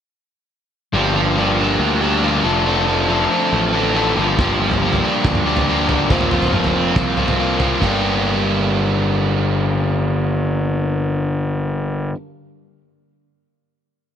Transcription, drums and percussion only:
4.39 kick, floor tom
4.71 floor tom
4.93 floor tom
5.25 kick, floor tom
5.35 mid tom
5.56 floor tom
5.89 floor tom
6.10 kick, floor tom
6.21 floor tom
6.31 floor tom
6.42 floor tom
6.53 mid tom
6.64 floor tom
6.96 kick, floor tom
7.17 floor tom
7.28 floor tom
7.60 floor tom
7.82 kick

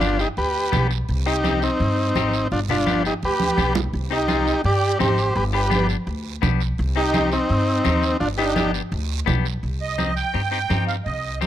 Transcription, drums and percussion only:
0.01 high conga, short guiro
0.19 short guiro
0.37 high conga, long guiro
0.73 high conga, low conga, short guiro
0.91 short guiro
1.09 high conga, long guiro
1.44 high conga, short guiro
1.62 short guiro
1.80 high conga, long guiro
2.15 high conga, short guiro
2.33 short guiro
2.51 high conga, long guiro
2.69 low conga
2.87 high conga, short guiro
3.05 short guiro
3.22 high conga, long guiro
3.40 high conga
3.58 high conga, short guiro
3.75 low conga, short guiro
3.93 high conga, long guiro
4.28 high conga, short guiro
4.47 short guiro
4.64 high conga, long guiro
5.00 high conga, short guiro
5.18 short guiro
5.36 high conga, long guiro
5.71 high conga, short guiro
5.89 short guiro
6.07 high conga, long guiro
6.43 high conga, low conga, short guiro
6.60 short guiro
6.78 high conga, long guiro
7.14 high conga, short guiro
7.32 short guiro
7.49 high conga, long guiro
7.85 high conga, short guiro
8.03 short guiro
8.21 high conga, long guiro
8.56 high conga, short guiro
8.74 short guiro
8.92 high conga, long guiro
9.28 high conga, low conga, short guiro
9.45 short guiro
9.63 high conga, long guiro
9.99 high conga, short guiro
10.17 short guiro
10.34 high conga, long guiro
10.70 high conga, short guiro
10.89 short guiro
11.06 high conga, long guiro
11.42 high conga, short guiro

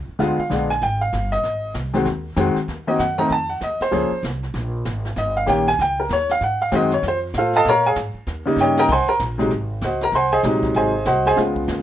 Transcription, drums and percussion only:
0.20 brush sweep, kick, snare
0.51 kick, snare, hi-hat pedal
0.70 snare
0.82 brush sweep, kick, snare
1.13 kick, snare, hi-hat pedal
1.33 snare
1.44 brush sweep, kick, snare
1.74 kick, snare, hi-hat pedal
1.94 snare
2.05 brush sweep, kick, snare
2.36 kick, snare, hi-hat pedal
2.56 snare
2.68 brush sweep, kick, snare
2.99 kick, snare, hi-hat pedal
3.18 snare
3.30 brush sweep, kick, snare
3.61 kick, snare, hi-hat pedal
3.81 snare
3.92 brush sweep, kick, snare
4.23 kick, snare, hi-hat pedal
4.43 snare
4.54 brush sweep, kick, snare
4.85 kick, snare, hi-hat pedal
5.05 snare
5.16 brush sweep, kick, snare
5.47 kick, snare, hi-hat pedal
5.67 snare
5.79 brush sweep, kick, snare
6.10 kick, snare, hi-hat pedal
6.29 snare
6.41 brush sweep, kick, snare
6.72 kick, snare, hi-hat pedal
6.91 snare
7.03 brush sweep, kick, snare
7.34 kick, snare, hi-hat pedal
7.53 snare
7.65 brush sweep, kick, snare
7.96 kick, snare, hi-hat pedal
8.27 brush sweep, kick, snare
8.58 snare, hi-hat pedal
8.77 snare
8.89 brush sweep, kick, snare, crash
9.19 kick, snare, hi-hat pedal
9.39 snare
9.51 brush sweep, kick, snare
9.81 kick, snare, hi-hat pedal
10.01 snare
10.12 brush sweep, kick, snare
10.43 kick, snare, hi-hat pedal
10.62 kick, snare
10.75 brush sweep, kick, snare
11.05 kick, snare, hi-hat pedal
11.25 snare
11.36 brush sweep, kick, snare
11.56 kick
11.68 kick, snare, hi-hat pedal

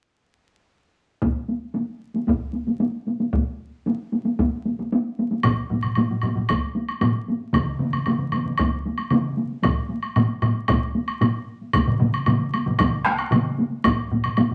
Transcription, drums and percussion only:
1.22 taiko, taiko high
1.48 taiko high
1.75 taiko high
2.14 taiko high
2.27 taiko, taiko high
2.53 taiko high
2.67 taiko high
2.80 taiko high
3.07 taiko high
3.20 taiko high
3.33 taiko, taiko high
3.86 taiko high
4.12 taiko high
4.25 taiko high
4.39 taiko, taiko high
4.65 taiko high
4.79 taiko high
4.93 taiko high
5.19 taiko high
5.32 taiko high
5.43 taiko, taiko low-mid, taiko high, high woodblock
5.70 taiko low-mid, taiko high
5.83 taiko low-mid, taiko high, high woodblock
5.95 taiko low-mid, taiko high, high woodblock
6.11 taiko low-mid, taiko high
6.22 taiko low-mid, taiko high, high woodblock
6.35 taiko low-mid, taiko high
6.49 taiko, taiko high, high woodblock
6.76 taiko high
6.88 taiko high, high woodblock
7.01 taiko low-mid, taiko high, high woodblock
7.15 taiko high
7.28 taiko high
7.42 taiko high
7.53 taiko, taiko mid, taiko high, high woodblock
7.79 taiko mid, taiko high
7.93 taiko mid, taiko high, high woodblock
8.06 taiko mid, taiko high, high woodblock
8.19 taiko mid, taiko high
8.32 taiko mid, taiko high, high woodblock
8.45 taiko mid, taiko high
8.57 taiko, taiko high, high woodblock
8.86 taiko high
8.98 taiko high, high woodblock
9.10 taiko mid, taiko high, high woodblock
9.24 taiko high
9.38 taiko high
9.50 taiko high
9.63 taiko, taiko low-mid, taiko high, high woodblock
9.89 taiko high
10.03 taiko high, high woodblock
10.16 taiko low-mid, taiko high, high woodblock
10.29 taiko high
10.42 taiko low-mid, taiko high, high woodblock
10.55 taiko high
10.68 taiko, taiko low-mid, taiko high, high woodblock
10.95 taiko high
11.08 taiko high, high woodblock
11.21 taiko low-mid, taiko high, high woodblock
11.35 taiko high
11.61 taiko high
11.73 taiko, taiko low-mid, taiko mid, taiko high, high woodblock
11.87 taiko low-mid, taiko mid, taiko high
11.99 taiko low-mid, taiko mid, taiko high
12.14 taiko high, high woodblock
12.26 taiko low-mid, taiko mid, taiko high, high woodblock
12.40 taiko high
12.54 taiko high, high woodblock
12.66 taiko low-mid, taiko mid, taiko high
12.79 taiko, taiko low-mid, taiko mid, taiko high, high woodblock
13.05 taiko rim, taiko high
13.19 taiko high, high woodblock
13.31 taiko low-mid, taiko mid, taiko high, high woodblock
13.47 taiko high
13.58 taiko high
13.72 taiko high
13.84 taiko, taiko low-mid, taiko high, high woodblock
13.99 taiko high
14.11 taiko low-mid, taiko high
14.24 taiko low-mid, taiko high, high woodblock
14.37 taiko low-mid, taiko high, high woodblock
14.51 taiko low-mid

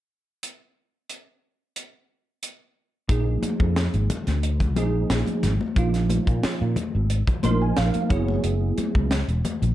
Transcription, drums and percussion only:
0.43 closed hi-hat
1.10 closed hi-hat
1.76 closed hi-hat
2.43 closed hi-hat
3.09 kick, closed hi-hat
3.43 closed hi-hat, high conga
3.60 kick
3.76 snare, closed hi-hat
3.94 closed hi-hat
4.10 closed hi-hat, high conga, low conga
4.27 snare, closed hi-hat
4.43 closed hi-hat
4.60 kick, closed hi-hat, low conga
4.76 closed hi-hat, high conga
5.10 snare, closed hi-hat
5.27 closed hi-hat, high conga
5.43 snare, closed hi-hat, low conga
5.61 high conga
5.76 kick, closed hi-hat
5.94 snare, closed hi-hat
6.09 closed hi-hat, high conga
6.27 kick, closed hi-hat
6.43 snare, closed hi-hat
6.76 closed hi-hat, high conga, low conga
7.10 closed hi-hat
7.27 kick, closed hi-hat, low conga
7.43 closed hi-hat, high conga
7.77 snare, closed hi-hat
7.94 closed hi-hat, high conga
8.10 kick, closed hi-hat, low conga
8.28 high conga
8.44 closed hi-hat
8.78 closed hi-hat, high conga
8.95 kick
9.11 snare, closed hi-hat
9.29 closed hi-hat
9.45 closed hi-hat, high conga, low conga
9.63 closed hi-hat

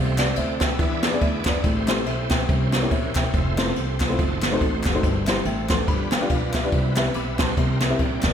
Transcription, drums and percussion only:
0.18 snare, clap, ride
0.36 ride
0.61 kick, snare, clap, ride
0.79 kick, ride
1.03 snare, clap, ride
1.21 kick, ride
1.45 kick, snare, clap, ride
1.64 kick, ride
1.88 snare, clap, ride
2.06 ride
2.30 kick, snare, clap, ride
2.49 kick, ride
2.73 snare, clap, ride
2.91 kick, ride
3.15 kick, snare, clap, ride
3.34 kick, ride
3.58 snare, clap, ride
3.76 ride
4.00 kick, snare, clap, ride
4.19 kick, ride
4.42 snare, clap, ride
4.61 kick, ride
4.84 kick, snare, clap, ride
5.03 kick, ride
5.27 snare, clap, ride
5.45 ride
5.69 kick, snare, clap, ride
5.88 kick, ride
6.12 snare, clap, ride
6.29 kick, ride
6.54 kick, snare, clap, ride
6.72 kick, ride
6.96 snare, clap, ride
7.14 ride
7.39 kick, snare, clap, ride
7.57 kick, ride
7.81 snare, clap, ride
7.99 kick, ride
8.22 kick, snare, clap, ride

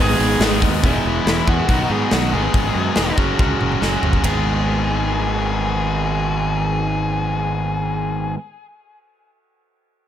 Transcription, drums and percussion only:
0.20 open hi-hat
0.41 snare, open hi-hat
0.62 kick, open hi-hat
0.84 kick, open hi-hat
1.27 snare, open hi-hat
1.48 kick
1.69 kick, open hi-hat
2.11 snare, open hi-hat
2.54 kick, open hi-hat
2.96 snare, open hi-hat
3.18 kick
3.39 kick, high tom
3.61 mid tom
3.72 mid tom
3.82 snare
4.03 floor tom
4.13 kick
4.24 kick, ride

